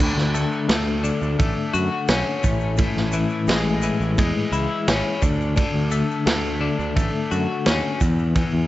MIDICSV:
0, 0, Header, 1, 4, 480
1, 0, Start_track
1, 0, Tempo, 696864
1, 1917, Time_signature, 4, 2, 24, 8
1, 5973, End_track
2, 0, Start_track
2, 0, Title_t, "Clean electric guitar"
2, 0, Program_c, 0, 27
2, 0, Note_on_c, 0, 50, 75
2, 237, Note_on_c, 0, 57, 72
2, 469, Note_off_c, 0, 57, 0
2, 472, Note_on_c, 0, 57, 74
2, 706, Note_off_c, 0, 50, 0
2, 714, Note_on_c, 0, 50, 63
2, 954, Note_off_c, 0, 57, 0
2, 957, Note_on_c, 0, 57, 66
2, 1195, Note_on_c, 0, 66, 69
2, 1439, Note_on_c, 0, 61, 70
2, 1675, Note_on_c, 0, 45, 70
2, 1676, Note_off_c, 0, 50, 0
2, 1676, Note_off_c, 0, 66, 0
2, 1905, Note_off_c, 0, 45, 0
2, 1913, Note_on_c, 0, 45, 81
2, 2159, Note_on_c, 0, 52, 75
2, 2396, Note_off_c, 0, 57, 0
2, 2399, Note_on_c, 0, 56, 76
2, 2631, Note_off_c, 0, 52, 0
2, 2639, Note_on_c, 0, 52, 66
2, 2876, Note_off_c, 0, 56, 0
2, 2884, Note_on_c, 0, 56, 72
2, 3116, Note_off_c, 0, 45, 0
2, 3117, Note_on_c, 0, 64, 68
2, 3357, Note_off_c, 0, 61, 0
2, 3360, Note_on_c, 0, 61, 70
2, 3592, Note_off_c, 0, 52, 0
2, 3595, Note_on_c, 0, 50, 65
2, 3597, Note_off_c, 0, 64, 0
2, 3598, Note_off_c, 0, 61, 0
2, 3601, Note_off_c, 0, 56, 0
2, 3823, Note_off_c, 0, 50, 0
2, 3832, Note_on_c, 0, 50, 77
2, 4074, Note_on_c, 0, 57, 65
2, 4303, Note_off_c, 0, 57, 0
2, 4311, Note_on_c, 0, 57, 66
2, 4542, Note_off_c, 0, 50, 0
2, 4550, Note_on_c, 0, 50, 68
2, 4786, Note_off_c, 0, 57, 0
2, 4794, Note_on_c, 0, 57, 75
2, 5038, Note_on_c, 0, 66, 74
2, 5276, Note_on_c, 0, 61, 70
2, 5512, Note_off_c, 0, 50, 0
2, 5514, Note_off_c, 0, 57, 0
2, 5516, Note_off_c, 0, 61, 0
2, 5516, Note_off_c, 0, 66, 0
2, 5520, Note_on_c, 0, 40, 65
2, 5746, Note_off_c, 0, 40, 0
2, 5755, Note_on_c, 0, 40, 75
2, 5973, Note_off_c, 0, 40, 0
2, 5973, End_track
3, 0, Start_track
3, 0, Title_t, "Fingered electric bass"
3, 0, Program_c, 1, 33
3, 0, Note_on_c, 1, 38, 112
3, 89, Note_off_c, 1, 38, 0
3, 112, Note_on_c, 1, 38, 83
3, 300, Note_off_c, 1, 38, 0
3, 476, Note_on_c, 1, 38, 98
3, 757, Note_off_c, 1, 38, 0
3, 838, Note_on_c, 1, 38, 83
3, 931, Note_off_c, 1, 38, 0
3, 962, Note_on_c, 1, 33, 102
3, 1053, Note_off_c, 1, 33, 0
3, 1198, Note_on_c, 1, 42, 89
3, 1291, Note_off_c, 1, 42, 0
3, 1437, Note_on_c, 1, 35, 89
3, 1530, Note_off_c, 1, 35, 0
3, 1681, Note_on_c, 1, 33, 95
3, 1960, Note_off_c, 1, 33, 0
3, 2038, Note_on_c, 1, 33, 83
3, 2225, Note_off_c, 1, 33, 0
3, 2395, Note_on_c, 1, 33, 111
3, 2677, Note_off_c, 1, 33, 0
3, 2757, Note_on_c, 1, 33, 87
3, 2851, Note_off_c, 1, 33, 0
3, 2877, Note_on_c, 1, 40, 90
3, 2971, Note_off_c, 1, 40, 0
3, 3110, Note_on_c, 1, 37, 89
3, 3207, Note_off_c, 1, 37, 0
3, 3361, Note_on_c, 1, 32, 93
3, 3453, Note_off_c, 1, 32, 0
3, 3597, Note_on_c, 1, 38, 89
3, 3878, Note_off_c, 1, 38, 0
3, 3955, Note_on_c, 1, 38, 81
3, 4143, Note_off_c, 1, 38, 0
3, 4315, Note_on_c, 1, 38, 103
3, 4596, Note_off_c, 1, 38, 0
3, 4676, Note_on_c, 1, 38, 85
3, 4770, Note_off_c, 1, 38, 0
3, 4797, Note_on_c, 1, 33, 96
3, 4890, Note_off_c, 1, 33, 0
3, 5040, Note_on_c, 1, 42, 83
3, 5132, Note_off_c, 1, 42, 0
3, 5284, Note_on_c, 1, 39, 103
3, 5374, Note_off_c, 1, 39, 0
3, 5517, Note_on_c, 1, 40, 100
3, 5797, Note_off_c, 1, 40, 0
3, 5879, Note_on_c, 1, 40, 77
3, 5973, Note_off_c, 1, 40, 0
3, 5973, End_track
4, 0, Start_track
4, 0, Title_t, "Drums"
4, 0, Note_on_c, 9, 36, 102
4, 0, Note_on_c, 9, 49, 98
4, 0, Note_on_c, 9, 82, 73
4, 67, Note_off_c, 9, 36, 0
4, 69, Note_off_c, 9, 49, 0
4, 69, Note_off_c, 9, 82, 0
4, 123, Note_on_c, 9, 38, 34
4, 192, Note_off_c, 9, 38, 0
4, 240, Note_on_c, 9, 82, 99
4, 309, Note_off_c, 9, 82, 0
4, 358, Note_on_c, 9, 82, 27
4, 427, Note_off_c, 9, 82, 0
4, 477, Note_on_c, 9, 53, 75
4, 479, Note_on_c, 9, 38, 119
4, 484, Note_on_c, 9, 82, 71
4, 546, Note_off_c, 9, 53, 0
4, 548, Note_off_c, 9, 38, 0
4, 553, Note_off_c, 9, 82, 0
4, 719, Note_on_c, 9, 82, 88
4, 788, Note_off_c, 9, 82, 0
4, 843, Note_on_c, 9, 82, 27
4, 912, Note_off_c, 9, 82, 0
4, 960, Note_on_c, 9, 53, 67
4, 963, Note_on_c, 9, 36, 106
4, 967, Note_on_c, 9, 82, 71
4, 1029, Note_off_c, 9, 53, 0
4, 1031, Note_off_c, 9, 36, 0
4, 1036, Note_off_c, 9, 82, 0
4, 1200, Note_on_c, 9, 82, 90
4, 1269, Note_off_c, 9, 82, 0
4, 1435, Note_on_c, 9, 82, 68
4, 1436, Note_on_c, 9, 53, 69
4, 1438, Note_on_c, 9, 38, 118
4, 1504, Note_off_c, 9, 82, 0
4, 1505, Note_off_c, 9, 53, 0
4, 1507, Note_off_c, 9, 38, 0
4, 1678, Note_on_c, 9, 82, 91
4, 1681, Note_on_c, 9, 36, 96
4, 1747, Note_off_c, 9, 82, 0
4, 1750, Note_off_c, 9, 36, 0
4, 1792, Note_on_c, 9, 82, 29
4, 1861, Note_off_c, 9, 82, 0
4, 1910, Note_on_c, 9, 82, 70
4, 1918, Note_on_c, 9, 53, 71
4, 1921, Note_on_c, 9, 36, 104
4, 1979, Note_off_c, 9, 82, 0
4, 1987, Note_off_c, 9, 53, 0
4, 1990, Note_off_c, 9, 36, 0
4, 2044, Note_on_c, 9, 38, 33
4, 2113, Note_off_c, 9, 38, 0
4, 2152, Note_on_c, 9, 82, 97
4, 2221, Note_off_c, 9, 82, 0
4, 2272, Note_on_c, 9, 82, 29
4, 2340, Note_off_c, 9, 82, 0
4, 2396, Note_on_c, 9, 82, 70
4, 2404, Note_on_c, 9, 53, 81
4, 2406, Note_on_c, 9, 38, 110
4, 2465, Note_off_c, 9, 82, 0
4, 2473, Note_off_c, 9, 53, 0
4, 2475, Note_off_c, 9, 38, 0
4, 2631, Note_on_c, 9, 82, 85
4, 2700, Note_off_c, 9, 82, 0
4, 2763, Note_on_c, 9, 82, 27
4, 2831, Note_off_c, 9, 82, 0
4, 2879, Note_on_c, 9, 82, 73
4, 2881, Note_on_c, 9, 36, 101
4, 2883, Note_on_c, 9, 53, 81
4, 2947, Note_off_c, 9, 82, 0
4, 2950, Note_off_c, 9, 36, 0
4, 2952, Note_off_c, 9, 53, 0
4, 3119, Note_on_c, 9, 82, 88
4, 3188, Note_off_c, 9, 82, 0
4, 3360, Note_on_c, 9, 53, 79
4, 3362, Note_on_c, 9, 82, 75
4, 3363, Note_on_c, 9, 38, 113
4, 3429, Note_off_c, 9, 53, 0
4, 3431, Note_off_c, 9, 38, 0
4, 3431, Note_off_c, 9, 82, 0
4, 3598, Note_on_c, 9, 82, 97
4, 3599, Note_on_c, 9, 36, 85
4, 3667, Note_off_c, 9, 36, 0
4, 3667, Note_off_c, 9, 82, 0
4, 3724, Note_on_c, 9, 82, 29
4, 3793, Note_off_c, 9, 82, 0
4, 3835, Note_on_c, 9, 82, 72
4, 3839, Note_on_c, 9, 53, 80
4, 3840, Note_on_c, 9, 36, 120
4, 3904, Note_off_c, 9, 82, 0
4, 3908, Note_off_c, 9, 53, 0
4, 3909, Note_off_c, 9, 36, 0
4, 4074, Note_on_c, 9, 82, 97
4, 4143, Note_off_c, 9, 82, 0
4, 4208, Note_on_c, 9, 82, 27
4, 4277, Note_off_c, 9, 82, 0
4, 4317, Note_on_c, 9, 53, 77
4, 4319, Note_on_c, 9, 38, 118
4, 4319, Note_on_c, 9, 82, 64
4, 4386, Note_off_c, 9, 53, 0
4, 4388, Note_off_c, 9, 38, 0
4, 4388, Note_off_c, 9, 82, 0
4, 4684, Note_on_c, 9, 82, 24
4, 4753, Note_off_c, 9, 82, 0
4, 4798, Note_on_c, 9, 36, 108
4, 4799, Note_on_c, 9, 53, 67
4, 4809, Note_on_c, 9, 82, 68
4, 4867, Note_off_c, 9, 36, 0
4, 4867, Note_off_c, 9, 53, 0
4, 4878, Note_off_c, 9, 82, 0
4, 5039, Note_on_c, 9, 82, 87
4, 5107, Note_off_c, 9, 82, 0
4, 5275, Note_on_c, 9, 53, 68
4, 5277, Note_on_c, 9, 38, 119
4, 5284, Note_on_c, 9, 82, 71
4, 5344, Note_off_c, 9, 53, 0
4, 5346, Note_off_c, 9, 38, 0
4, 5353, Note_off_c, 9, 82, 0
4, 5517, Note_on_c, 9, 36, 95
4, 5517, Note_on_c, 9, 82, 90
4, 5586, Note_off_c, 9, 36, 0
4, 5586, Note_off_c, 9, 82, 0
4, 5638, Note_on_c, 9, 82, 26
4, 5706, Note_off_c, 9, 82, 0
4, 5755, Note_on_c, 9, 53, 69
4, 5756, Note_on_c, 9, 36, 101
4, 5758, Note_on_c, 9, 82, 62
4, 5824, Note_off_c, 9, 53, 0
4, 5825, Note_off_c, 9, 36, 0
4, 5827, Note_off_c, 9, 82, 0
4, 5973, End_track
0, 0, End_of_file